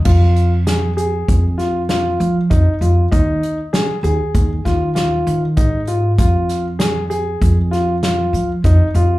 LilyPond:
<<
  \new Staff \with { instrumentName = "Grand piano" } { \time 5/4 \key f \minor \tempo 4 = 98 f'4 aes'8 aes'4 f'8 f'4 ees'8 f'8 | ees'4 aes'8 aes'4 f'8 f'4 ees'8 f'8 | f'4 aes'8 aes'4 f'8 f'4 ees'8 f'8 | }
  \new Staff \with { instrumentName = "Upright bass" } { \clef bass \time 5/4 \key f \minor f,2 f,4. f8 f,16 r16 f,8 | ees,8 r4 ees,16 r16 ees,8 ees,4 ees8 aes,4 | f,2 f,4. f8 f,16 r16 f,8 | }
  \new DrumStaff \with { instrumentName = "Drums" } \drummode { \time 5/4 <cymc bd>8 hh8 <hh sn>8 hh8 <hh bd>8 <hh sn>8 <hh sn>8 hh8 <hh bd>8 hh8 | <hh bd>8 hh8 <hh sn>8 hh8 <hh bd>8 <hh bd sn>8 <hh sn>8 hh8 <hh bd>8 hh8 | <hh bd>8 <hh sn>8 <hh sn>8 hh8 <hh bd>8 <hh sn>8 <hh sn>8 hh8 <hh bd sn>8 hh8 | }
>>